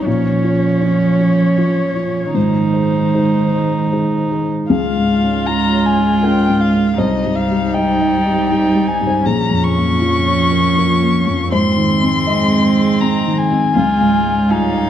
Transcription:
0.05 0.43 A#2 medium
0.05 2.34 F3 medium
0.05 2.35 F3 medium
0.05 2.34 C#4 medium
0.05 2.35 F4 medium
0.05 2.36 C#5 medium
0.05 2.35 C#5 medium
0.44 0.78 F4 soft
0.44 0.78 C#5 soft
0.81 1.15 C#4 soft
0.81 1.16 F4 soft
0.81 1.16 C#5 soft
1.19 1.53 F4 soft
1.19 1.54 C#5 soft
1.57 1.92 C#4 soft
1.57 1.92 F4 soft
1.57 1.92 C#5 soft
1.95 2.31 F4 soft
1.95 2.31 C#5 soft
2.34 2.72 G#2 soft
2.34 4.45 D#3 soft
2.34 4.69 G#3 medium
2.34 4.45 D#4 soft
2.34 4.69 D#4 medium
2.34 4.49 C5 soft
2.34 4.69 C5 medium
2.73 3.09 G#4 soft
2.73 3.09 C5 soft
3.14 3.49 D#4 soft
3.14 3.49 G#4 soft
3.14 3.49 C5 soft
3.53 3.88 G#4 soft
3.53 3.88 C5 soft
3.91 4.27 D#4 soft
3.91 4.27 G#4 soft
3.91 4.27 C5 soft
4.31 4.66 G#4 soft
4.31 4.66 C5 soft
4.70 6.94 C#2 medium
4.70 6.94 G#3 medium
4.70 6.95 G#3 medium
4.70 6.95 F4 medium
4.70 6.18 G#4 medium
4.70 6.94 C#5 medium
4.70 5.48 F5 medium
4.96 5.36 G#2 soft
5.22 5.62 C#4 soft
5.47 5.87 F4 soft
5.47 5.87 A#5 medium
5.73 6.13 C#5 medium
5.86 6.26 G#5 medium
5.98 6.38 F4 soft
6.23 6.64 C#4 medium
6.23 6.94 A#4 medium
6.23 6.62 G5 medium
6.49 6.88 G#2 soft
6.61 7.00 F5 medium
6.74 6.99 C#4 soft
6.98 9.21 C2 medium
6.98 9.25 G3 medium
6.98 9.22 G3 medium
6.98 9.21 D#4 medium
6.98 9.26 D#4 medium
6.98 7.70 C5 medium
6.98 9.25 C5 medium
6.98 7.37 D#5 medium
7.25 7.65 G2 soft
7.35 7.76 F5 medium
7.50 7.90 G3 soft
7.74 8.15 D#4 soft
7.74 7.99 D#5 medium
7.74 8.49 G5 medium
8.01 8.40 D#5 soft
8.25 8.65 G4 soft
8.49 8.90 D#4 medium
8.49 8.89 G5 medium
8.75 9.15 G3 soft
8.87 9.27 G#5 medium
9.00 9.25 G2 soft
9.07 9.24 C5 medium
9.24 11.48 A#1 medium
9.24 11.48 F3 medium
9.24 11.51 A#3 medium
9.24 11.48 C#4 medium
9.24 11.52 F4 medium
9.24 10.72 G#4 medium
9.24 11.51 C#5 medium
9.24 9.65 A#5 medium
9.51 9.91 F2 soft
9.64 11.52 C#6 medium
9.77 10.17 A#3 soft
10.01 10.41 F4 soft
10.26 10.66 C#5 soft
10.51 10.76 A#4 soft
10.77 11.17 F4 soft
10.77 11.48 A#4 medium
11.02 11.42 A#3 soft
11.27 11.52 F2 soft
11.52 13.71 G#2 medium
11.52 13.71 G#3 medium
11.52 13.72 C4 medium
11.52 13.76 C4 medium
11.52 12.23 C5 medium
11.52 13.76 D#5 medium
11.52 14.90 G#5 medium
11.52 13.02 C6 medium
11.77 12.17 D#3 soft
12.03 12.42 C4 soft
12.27 12.67 G#4 soft
12.27 13.71 D#5 medium
12.53 12.92 C5 soft
12.77 13.16 G#4 soft
13.01 13.41 C4 medium
13.01 13.39 A#5 medium
13.27 13.66 D#3 soft
13.38 14.51 G#5 medium
13.51 13.76 C4 soft
13.75 14.90 C#2 medium
13.75 14.53 G#3 medium
13.75 14.90 C#4 medium
13.75 14.52 F4 medium
13.75 14.90 C#5 medium
13.75 14.46 F5 medium
14.01 14.40 G#2 soft
14.26 14.65 G#3 soft
14.49 14.89 G3 medium
14.49 14.90 D#4 medium
14.49 14.90 F4 soft
14.49 14.90 F5 medium
14.49 14.90 G#5 medium
14.75 14.90 C#5 soft

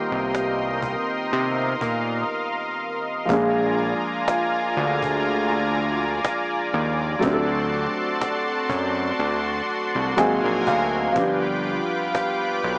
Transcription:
0.00 3.23 D#3 medium
0.00 3.24 G3 medium
0.00 3.25 A#3 medium
0.00 3.31 B3 medium
0.00 3.26 C4 medium
0.00 3.31 F4 medium
0.00 3.27 G4 medium
0.00 3.25 A#4 medium
0.00 3.25 D#5 medium
0.00 1.28 G5 medium
0.00 3.25 C6 medium
0.12 0.96 C2 loud
0.35 cajon slap loud
0.82 cajon bass medium
1.32 1.75 C3 loud
1.32 3.27 F5 medium
1.32 cajon slap soft
1.81 2.24 A#2 medium
1.81 cajon bass medium
3.25 3.94 A#1 loud
3.25 7.17 F3 medium
3.25 7.18 G#3 medium
3.25 7.19 F4 medium
3.25 10.14 D5 medium
3.25 7.19 G#5 medium
3.25 7.19 A#5 medium
3.25 cajon bass loud
3.29 7.19 A#3 medium
3.29 7.20 D4 medium
3.29 7.21 G#4 medium
3.79 cajon slap soft
4.28 cajon slap loud
4.76 6.20 D2 loud
4.76 cajon slap soft
5.03 cajon bass medium
5.25 cajon slap soft
5.75 cajon slap soft
6.25 cajon slap loud
6.73 7.16 D#2 medium
6.73 cajon slap soft
7.19 7.88 D2 loud
7.19 10.12 F#3 medium
7.19 10.13 A3 medium
7.19 10.14 C4 medium
7.19 11.12 F#4 medium
7.19 10.15 A5 medium
7.19 11.12 C6 medium
7.19 cajon bass loud
7.25 10.15 D4 medium
7.25 7.32 G4 medium
7.33 10.19 A4 medium
7.73 cajon slap soft
8.21 cajon slap loud
8.69 9.12 F#2 medium
8.69 cajon bass loud
9.19 9.62 D2 loud
9.19 cajon slap soft
9.69 cajon slap soft
9.95 10.15 C2 medium
10.16 10.41 G#1 loud
10.16 11.15 F#3 medium
10.16 11.16 A#3 medium
10.16 11.16 C4 medium
10.16 11.17 D#4 medium
10.16 11.17 G#4 medium
10.16 11.15 A#4 medium
10.16 11.15 G#5 medium
10.16 10.64 G#5 medium
10.16 cajon slap loud
10.44 10.64 A#1 loud
10.67 11.09 D2 loud
10.67 11.13 F5 medium
10.67 cajon bass medium
11.12 11.81 G1 loud
11.12 12.78 F3 medium
11.12 12.78 G3 medium
11.12 12.78 F4 medium
11.12 12.78 B4 medium
11.12 12.78 G5 medium
11.12 12.78 D6 medium
11.12 cajon bass loud
11.16 12.78 B3 medium
11.16 12.78 D4 medium
11.16 12.78 G4 medium
11.66 cajon slap soft
12.15 cajon slap loud
12.63 12.78 B1 loud
12.63 cajon slap soft

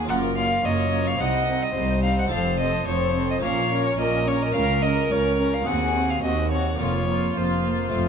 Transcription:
0.04 1.15 C#4 soft
0.04 1.15 F4 soft
0.04 1.16 A#4 soft
0.09 0.58 F#1 medium
0.09 0.55 F#2 soft
0.09 0.58 F#2 medium
0.09 0.36 A#3 soft
0.09 0.36 F4 medium
0.09 0.64 A#4 medium
0.09 0.17 F#5 medium
0.37 0.64 A#3 soft
0.37 0.63 F4 soft
0.37 0.67 F5 medium
0.64 1.14 F#1 soft
0.64 1.11 F#2 soft
0.64 1.14 F#2 medium
0.64 0.91 A#3 soft
0.64 0.91 F4 soft
0.64 1.20 C#5 medium
0.64 1.09 D#5 medium
0.92 1.20 A#3 medium
0.92 1.20 F4 soft
1.07 1.22 F5 medium
1.15 2.25 C4 soft
1.15 2.27 D#4 soft
1.15 2.28 C5 soft
1.20 1.66 C2 soft
1.20 1.70 C2 medium
1.20 1.47 C4 soft
1.20 1.47 D#4 medium
1.20 1.76 D#5 medium
1.20 1.64 F#5 medium
1.48 1.75 C4 soft
1.48 1.74 D#4 soft
1.63 2.03 D#5 medium
1.75 2.22 C2 soft
1.75 2.25 C2 medium
1.75 2.03 C4 soft
1.75 2.02 D#4 medium
1.75 3.40 C5 medium
2.03 2.30 C4 medium
2.03 2.31 D#4 soft
2.03 2.18 F5 medium
2.19 2.24 F#5 medium
2.26 3.37 C4 soft
2.26 3.38 F4 soft
2.26 3.39 A4 soft
2.31 2.81 F1 medium
2.31 2.77 F2 soft
2.31 2.81 F2 medium
2.31 2.58 C4 medium
2.31 2.58 A4 medium
2.31 2.59 F5 medium
2.59 2.86 C4 soft
2.59 2.85 A4 soft
2.59 2.87 D#5 medium
2.87 3.37 F1 medium
2.87 3.34 F2 soft
2.87 3.37 F2 medium
2.87 3.15 C4 soft
2.87 3.14 A4 soft
2.87 3.29 C#5 medium
3.15 3.43 C4 medium
3.15 3.43 A4 soft
3.31 3.36 D#5 medium
3.38 4.49 C#4 soft
3.38 4.50 F4 soft
3.38 4.51 A#4 soft
3.43 3.93 A#1 medium
3.43 3.90 A#2 soft
3.43 3.93 A#2 medium
3.43 3.70 C#4 soft
3.43 3.69 A#4 soft
3.43 4.00 C#5 medium
3.43 3.85 F5 medium
3.70 3.97 C#4 soft
3.70 3.97 A#4 soft
3.86 3.98 C#5 medium
3.99 4.49 A#1 medium
3.99 4.46 A#2 soft
3.99 4.49 A#2 medium
3.99 4.26 C#4 medium
3.99 4.25 A#4 soft
3.99 5.67 A#4 medium
3.99 4.29 D#5 medium
4.27 4.54 C#4 soft
4.27 4.54 A#4 medium
4.27 4.44 C#5 medium
4.42 4.54 D#5 medium
4.51 5.04 C#2 medium
4.51 5.05 C#2 medium
4.51 5.62 C#4 soft
4.51 5.62 F4 soft
4.51 5.63 A#4 soft
4.51 4.84 F5 medium
4.55 5.02 C#2 soft
4.55 4.82 C#4 medium
4.55 4.82 A#4 medium
4.83 5.10 C#4 soft
4.83 5.10 A#4 soft
4.83 5.12 D#5 medium
5.11 5.60 C#2 medium
5.11 5.60 C#2 soft
5.11 5.58 C#2 soft
5.11 5.37 C#4 soft
5.11 5.38 A#4 soft
5.11 5.55 C#5 medium
5.39 5.66 C#4 soft
5.39 5.67 A#4 soft
5.54 5.68 F5 medium
5.63 6.74 C4 soft
5.63 6.75 D#4 soft
5.63 6.76 F#4 soft
5.67 6.17 D#2 soft
5.67 6.17 D#2 medium
5.67 6.14 D#2 soft
5.67 5.94 C4 soft
5.67 5.94 F#4 soft
5.67 6.22 G#4 medium
5.67 6.12 F#5 medium
5.95 6.22 C4 soft
5.95 6.22 F#4 soft
6.10 6.23 F5 medium
6.23 6.73 D#2 medium
6.23 6.71 D#2 soft
6.23 6.50 C4 medium
6.23 6.50 F#4 soft
6.23 6.80 F#4 soft
6.23 6.51 D#5 medium
6.51 6.79 C4 soft
6.51 6.79 F#4 soft
6.51 6.79 C#5 medium
6.76 7.88 A#3 soft
6.76 7.07 A#3 soft
6.76 7.88 C4 soft
6.76 7.89 F4 soft
6.80 7.30 F1 medium
6.80 7.27 F2 soft
6.80 7.30 F2 soft
6.80 7.07 F4 medium
6.80 8.08 F4 medium
6.80 7.38 C#5 medium
7.08 7.36 A#3 soft
7.08 7.35 F4 soft
7.36 7.86 F1 soft
7.36 7.83 F2 soft
7.36 7.87 F2 soft
7.36 7.64 A#3 soft
7.36 7.64 F4 soft
7.36 8.08 C5 medium
7.65 7.93 A#3 soft
7.65 7.91 F4 soft
7.89 8.08 A3 soft
7.89 8.08 C4 soft
7.89 8.08 F4 soft
7.93 8.08 F1 soft
7.93 8.08 F2 soft
7.93 8.08 A3 soft
7.93 8.08 F4 soft

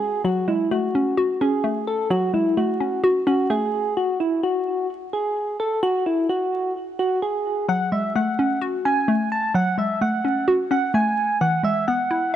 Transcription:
0.00 0.24 G#3 medium
0.00 0.25 C#4 medium
0.00 0.24 E4 loud
0.00 0.22 G#4 medium
0.24 1.41 F#3 medium
0.24 0.46 F#4 loud
0.48 1.64 G#3 medium
0.48 0.69 E4 medium
0.71 1.63 A3 medium
0.71 1.15 F#4 medium
0.95 1.40 C#4 medium
1.17 2.34 F#4 loud
1.41 2.57 C#4 medium
1.41 1.85 G#4 medium
1.64 2.56 A3 medium
1.87 2.08 A4 medium
2.10 3.27 F#3 loud
2.10 2.32 F#4 loud
2.33 3.50 G#3 medium
2.33 2.55 E4 medium
2.57 3.49 A3 medium
2.57 3.01 F#4 medium
2.80 3.26 C#4 medium
3.04 3.97 F#4 loud
3.27 3.97 C#4 medium
3.27 3.48 F#4 medium
3.50 3.97 A3 medium
3.50 3.94 G#4 medium
3.97 4.18 F#4 medium
4.20 4.41 E4 medium
4.43 4.87 F#4 medium
5.13 5.57 G#4 medium
5.60 5.81 A4 medium
5.83 6.04 F#4 loud
6.06 6.27 E4 medium
6.29 6.73 F#4 medium
6.99 7.20 F#4 medium
7.22 7.66 G#4 medium
7.69 8.85 F#3 medium
7.69 7.90 F#5 loud
7.92 9.08 G#3 medium
7.92 8.13 E5 medium
8.15 9.07 A3 medium
8.15 8.59 F#5 medium
8.39 8.84 C#4 medium
8.61 9.78 F#4 loud
8.85 10.02 C#4 medium
8.85 9.29 G#5 medium
9.08 10.00 A3 medium
9.32 9.53 A5 medium
9.54 10.71 F#3 loud
9.54 9.76 F#5 loud
9.78 10.94 G#3 medium
9.78 9.99 E5 medium
10.01 10.93 A3 medium
10.01 10.45 F#5 medium
10.24 10.70 C#4 medium
10.48 11.41 F#4 loud
10.71 11.41 C#4 medium
10.71 10.92 F#5 medium
10.94 11.41 A3 medium
10.94 11.38 G#5 medium
11.41 12.36 E3 loud
11.41 11.62 F#5 medium
11.63 12.36 G#3 medium
11.63 11.85 E5 medium
11.88 12.36 B3 medium
11.88 12.31 F#5 medium
12.11 12.36 E4 medium

